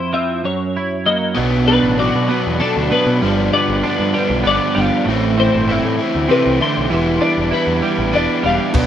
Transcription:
Already playing: clean electric guitar F2 E4 C5
0.13 clean electric guitar F3 C4 E5
0.44 clean electric guitar F#2 C#5
0.77 clean electric guitar E4
1.06 clean electric guitar F#3 A#3 D#5
1.35 picked electric bass B1, overdriven electric guitar B2 F#3 B3 D4, clean electric guitar B2
1.66 overdriven electric guitar F#3 B3 D4, clean electric guitar D4 B4
1.83 picked electric bass A1
1.98 overdriven electric guitar B2 F#3 B3 D4, clean electric guitar F#4 D5
2.16 picked electric bass B2
2.28 overdriven electric guitar F#3 B3 D4, clean electric guitar B3
2.47 picked electric bass E2
2.59 overdriven electric guitar B2 F#3 B3 D4, clean electric guitar D4 A4
2.77 picked electric bass D2
2.90 overdriven electric guitar F#3 B3 D4, clean electric guitar B3 B4
3.07 picked electric bass B2
3.21 picked electric bass G1, overdriven electric guitar G2 D3 F3 B3 D4, clean electric guitar G2
3.52 overdriven electric guitar F3 B3 D4, clean electric guitar B3 D5
3.68 picked electric bass G1
3.83 overdriven electric guitar D3 F3 B3 D4, clean electric guitar D4 B4
4.00 picked electric bass G2
4.14 overdriven electric guitar F3 B3 D4, clean electric guitar G3
4.30 picked electric bass B1
4.44 picked electric bass G1, overdriven electric guitar D3 F3 B3, clean electric guitar B3 D5
4.49 overdriven electric guitar D4
4.74 picked electric bass G1, clean electric guitar G3, overdriven electric guitar B3 D4
4.79 overdriven electric guitar F3, clean electric guitar F5
5.05 picked electric bass A1, clean electric guitar A2, overdriven electric guitar A2 E3
5.10 overdriven electric guitar A3 C4 E4
5.37 overdriven electric guitar A3 C4 E4, clean electric guitar C4 C5
5.54 picked electric bass G1
5.68 overdriven electric guitar E3 A3 C4 E4, clean electric guitar E4 E5
5.85 picked electric bass A2
5.99 overdriven electric guitar A3 C4 E4
6.15 picked electric bass D2
6.29 clean electric guitar C3 B4, overdriven electric guitar E3 A3 C4 E4
6.46 picked electric bass C2
6.61 clean electric guitar D3 C6, overdriven electric guitar A3 C4 E4
6.78 picked electric bass B1
6.90 picked electric bass E1, clean electric guitar E3, overdriven electric guitar E3 G3 B3
6.94 overdriven electric guitar E4
7.21 overdriven electric guitar G3 B3 E4, clean electric guitar D4 D5
7.38 picked electric bass E1
7.51 overdriven electric guitar E3 G3 B3, clean electric guitar E4 B4
7.55 overdriven electric guitar E4
7.67 picked electric bass E2
7.82 clean electric guitar G3, overdriven electric guitar G3 B3 E4
7.98 picked electric bass A1
8.13 picked electric bass E1, overdriven electric guitar E3 G3 B3 E4, clean electric guitar D4 D5
8.43 picked electric bass E1, clean electric guitar G3 F5, overdriven electric guitar B3 E4
8.47 overdriven electric guitar G3
8.74 picked electric bass B1, overdriven electric guitar B2 F#3 B3 D4, clean electric guitar B2, kick, crash

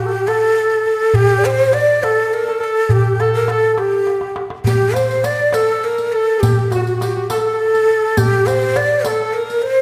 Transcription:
0.00 ney G4
0.06 alto saxophone A4
0.12 alto saxophone G4
0.28 ney A4, alto saxophone A4, darbuka tek
0.33 alto saxophone A4
0.42 alto saxophone A4
0.50 alto saxophone A4
0.58 alto saxophone A4
0.66 alto saxophone A4
0.71 alto saxophone A4, darbuka ka
0.81 alto saxophone A4
0.86 alto saxophone A4, darbuka ka
0.94 alto saxophone A4
1.02 alto saxophone A4
1.14 ney G4, alto saxophone G4, darbuka dum
1.39 alto saxophone D5
1.44 alto saxophone C5, ney C5, darbuka tek
1.73 alto saxophone D5, ney D5, darbuka tek
2.03 ney A4, alto saxophone A4, darbuka tek
2.11 alto saxophone A4
2.19 alto saxophone A4
2.27 alto saxophone A4
2.33 alto saxophone A4, ney A#4
2.43 alto saxophone A4, darbuka ka
2.48 alto saxophone A4
2.60 alto saxophone A4, ney A4, darbuka ka
2.89 ney G4, alto saxophone G4, darbuka dum
3.20 ney A4, alto saxophone A4, darbuka tek
3.34 ney A#4
3.48 ney A4, alto saxophone A4, darbuka tek
3.74 alto saxophone A4, darbuka tek
3.78 ney G4, alto saxophone G4
4.07 darbuka tek
4.21 darbuka ka
4.36 darbuka tek
4.50 darbuka ka
4.64 ney G4, alto saxophone G4, riq, darbuka dum
4.94 ney C5, alto saxophone C5, riq, darbuka tek
5.11 riq
5.24 ney D5, alto saxophone D5, riq, darbuka tek
5.53 ney A4, alto saxophone A4, riq, darbuka tek
5.84 ney A#4, alto saxophone A#4
5.98 riq, darbuka ka
6.13 ney A4, alto saxophone A4, darbuka ka
6.38 ney G4, alto saxophone A4
6.43 alto saxophone G4, riq, darbuka dum
6.71 ney F#4, alto saxophone F#4, riq, darbuka tek
6.82 alto saxophone F#4
6.87 alto saxophone F#4, riq
6.95 alto saxophone F#4
7.01 alto saxophone F#4, ney G4, riq, darbuka tek
7.08 alto saxophone F#4
7.15 alto saxophone F#4
7.30 alto saxophone A4, ney A4, riq, darbuka tek
7.39 alto saxophone A4
7.47 alto saxophone A4
7.54 alto saxophone A4
7.61 alto saxophone A4
7.67 alto saxophone A4
7.73 alto saxophone A4, riq, darbuka ka
7.86 alto saxophone A4, darbuka ka
8.17 ney G4, alto saxophone G4, riq, darbuka dum
8.47 ney C5, riq, darbuka tek
8.61 riq
8.76 ney D5, alto saxophone D5, darbuka tek
9.05 ney A4, alto saxophone A4, riq, darbuka tek
9.33 ney A#4, alto saxophone A#4
9.50 riq
9.62 ney C5, darbuka ka
9.67 alto saxophone C5

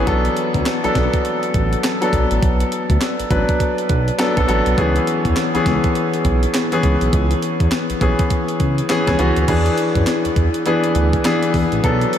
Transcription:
0.06 analog synth bass B1, grand piano F#3 B3 D4 A4, kick, closed hi-hat
0.25 closed hi-hat
0.37 closed hi-hat
0.54 analog synth bass D2, kick, closed hi-hat
0.66 snare, clap, closed hi-hat
0.83 analog synth bass B1, grand piano F#3 B3 D4 A4, closed hi-hat
0.95 analog synth bass B1, kick, snare, closed hi-hat
1.13 kick, closed hi-hat
1.25 closed hi-hat
1.43 closed hi-hat
1.54 analog synth bass A1, kick, closed hi-hat
1.73 closed hi-hat
1.84 snare, clap, closed hi-hat
2.01 grand piano F#3 B3 D4 A4, closed hi-hat
2.13 analog synth bass B1, kick, closed hi-hat
2.31 analog synth bass A1, closed hi-hat
2.43 analog synth bass B1, kick, closed hi-hat
2.60 closed hi-hat
2.72 closed hi-hat
2.90 analog synth bass D2, kick, closed hi-hat
3.01 snare, clap, closed hi-hat
3.20 analog synth bass A1, closed hi-hat
3.30 analog synth bass A1, grand piano F#3 B3 D4 B4, kick, closed hi-hat
3.49 kick, closed hi-hat
3.60 kick, closed hi-hat
3.78 closed hi-hat
3.89 analog synth bass B1, kick, closed hi-hat
4.08 closed hi-hat
4.18 grand piano F#3 B3 D4 A4, snare, clap, closed hi-hat
4.36 analog synth bass B1, grand piano F#3 B3 D4 A4, kick, closed hi-hat
4.48 analog synth bass A1, grand piano F#3 B3 D4 A4, closed hi-hat
4.66 analog synth bass B1, closed hi-hat
4.77 analog synth bass C#2, grand piano E3 B3 C#4 G#4, kick, closed hi-hat
4.96 closed hi-hat
5.07 closed hi-hat
5.25 analog synth bass E2, kick, closed hi-hat
5.36 snare, clap, closed hi-hat
5.54 analog synth bass C#2, grand piano E3 B3 C#4 G#4, closed hi-hat
5.66 analog synth bass C#2, kick, snare, closed hi-hat
5.84 kick, closed hi-hat
5.95 closed hi-hat
6.14 closed hi-hat
6.25 analog synth bass B1, kick, closed hi-hat
6.43 closed hi-hat
6.54 snare, clap, closed hi-hat
6.72 grand piano E3 B3 C#4 G#4, closed hi-hat
6.83 analog synth bass C#2, kick, closed hi-hat
7.01 analog synth bass B1, closed hi-hat
7.13 analog synth bass C#2, kick, closed hi-hat
7.31 closed hi-hat
7.42 closed hi-hat
7.60 analog synth bass E2, kick, closed hi-hat
7.71 snare, clap, closed hi-hat
7.90 analog synth bass B1, closed hi-hat
8.01 analog synth bass B1, grand piano E3 B3 C#4 G#4, kick, closed hi-hat
8.19 kick, closed hi-hat
8.30 kick, closed hi-hat
8.49 closed hi-hat
8.60 analog synth bass C#2, kick, closed hi-hat
8.78 closed hi-hat
8.89 grand piano E3 B3 C#4 G#4, snare, clap, closed hi-hat
9.07 analog synth bass C#2, grand piano E3 B3 C#4 G#4, kick, snare, closed hi-hat
9.18 analog synth bass C#2, grand piano E3 B3 C#4 F#4, closed hi-hat
9.36 analog synth bass D2, closed hi-hat
9.48 analog synth bass E2, grand piano E3 B3 D4 G#4, kick, closed hi-hat, crash
9.66 closed hi-hat
9.78 closed hi-hat
9.95 analog synth bass F#2, kick, closed hi-hat
10.07 snare, clap, closed hi-hat
10.25 analog synth bass E2, closed hi-hat
10.36 analog synth bass E2, kick, closed hi-hat
10.54 closed hi-hat
10.66 grand piano E3 B3 D4 G#4, closed hi-hat
10.84 closed hi-hat
10.95 analog synth bass D2, closed hi-hat
11.13 kick, closed hi-hat
11.24 grand piano E3 B3 D4 G#4, snare, clap, closed hi-hat
11.43 closed hi-hat
11.54 analog synth bass E2, kick, open hi-hat
11.72 analog synth bass A1, closed hi-hat
11.83 analog synth bass B1, grand piano F#3 B3 D4 A4, kick, closed hi-hat
12.01 closed hi-hat
12.13 closed hi-hat

